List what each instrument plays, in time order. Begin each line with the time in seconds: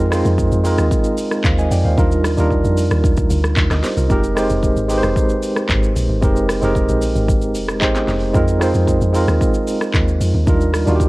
Already playing: log drum bass F2, tine electric piano D#4 F4 A#4
0.10 tine electric piano G#3 C4 D#4 F4 C5, cross-stick, open hi-hat, shaker
0.25 log drum bass F2, shaker
0.38 kick, shaker
0.52 log drum bass F2, shaker
0.63 tine electric piano G#3 C4 D#4 F4 A#4, open hi-hat, shaker
0.78 log drum bass D#2, cross-stick, shaker
0.91 kick, shaker
1.04 shaker
1.18 open hi-hat, shaker
1.31 cross-stick, shaker
1.44 log drum bass D#2, tine electric piano C5 F5, kick, clap, shaker
1.58 tine electric piano D#5 G#5, shaker
1.71 log drum bass F2, tine electric piano D5 G5, open hi-hat, shaker
1.85 log drum bass D#2, tine electric piano C5 F5
1.96 log drum bass D#2, tine electric piano G3 D4 D#4 F4 A#4, kick, shaker
2.11 shaker
2.24 cross-stick, open hi-hat, shaker
2.37 log drum bass D#2, tine electric piano G3 D4 D#4 F4 A#4, shaker
2.50 kick, shaker
2.64 log drum bass F2, shaker
2.77 open hi-hat, shaker
2.91 log drum bass D#2, cross-stick, shaker
3.04 kick, shaker
3.17 kick, shaker
3.30 log drum bass D2, open hi-hat, shaker
3.44 cross-stick, shaker
3.57 log drum bass D#2, kick, clap, shaker
3.71 log drum bass D2, tine electric piano A#4 D#5, cross-stick, snare, shaker
3.83 tine electric piano G4 C5, snare, open hi-hat, shaker
3.97 log drum bass C2, tine electric piano F4 A#4, shaker
4.09 log drum bass F1, tine electric piano G#3 C4 D#4 G4 A#4, kick, shaker
4.24 shaker
4.35 tine electric piano G#3 C4 D#4 G4 C5, cross-stick, open hi-hat, shaker
4.50 log drum bass F1, shaker
4.63 kick, shaker
4.77 log drum bass G#1, shaker
4.88 tine electric piano G#3 C4 D#4 G4 B4, open hi-hat, shaker
4.98 tine electric piano C5
5.03 log drum bass F1, cross-stick, shaker
5.16 kick, shaker
5.29 shaker
5.43 open hi-hat, shaker
5.56 cross-stick, shaker
5.69 log drum bass G#1, kick, clap, shaker
5.83 shaker
5.96 log drum bass A#1, open hi-hat, shaker
6.09 log drum bass G#1
6.21 log drum bass F1, tine electric piano G#3 C4 D#4 G4 A#4, kick, shaker
6.36 shaker
6.49 cross-stick, open hi-hat, shaker
6.61 log drum bass F1, tine electric piano G#3 C4 D#4 G4 A#4, shaker
6.75 kick, shaker
6.89 log drum bass A#1, shaker
7.02 open hi-hat, shaker
7.16 log drum bass G#1, shaker
7.28 kick, shaker
7.41 shaker
7.55 log drum bass F1, open hi-hat, shaker
7.68 cross-stick, shaker
7.80 log drum bass G#1, tine electric piano G#3 C4 D#4 G4 C5, kick, clap, shaker
7.95 snare, shaker
8.08 log drum bass F1, snare, open hi-hat, shaker
8.33 log drum bass F2, tine electric piano G#3 C4 D#4 F4 A#4, kick, shaker
8.48 shaker
8.60 tine electric piano G#3 C4 D#4 F4 C5, cross-stick, open hi-hat, shaker
8.74 log drum bass F2, shaker
8.88 kick, shaker
9.01 log drum bass F2, shaker
9.13 tine electric piano G#3 C4 D#4 F4 A#4, open hi-hat, shaker
9.28 log drum bass D#2, cross-stick, shaker
9.41 kick, shaker
9.54 shaker
9.67 open hi-hat, shaker
9.81 cross-stick, shaker
9.94 log drum bass D#2, kick, clap, shaker
10.08 shaker
10.20 log drum bass F2, open hi-hat, shaker
10.34 log drum bass D#2
10.46 log drum bass D#2, tine electric piano G3 D4 D#4 F4 A#4, kick, shaker
10.61 shaker
10.74 cross-stick, open hi-hat, shaker
10.86 log drum bass D#2, tine electric piano G3 D4 D#4 F4 F#4, shaker
10.96 tine electric piano G4
11.00 kick, shaker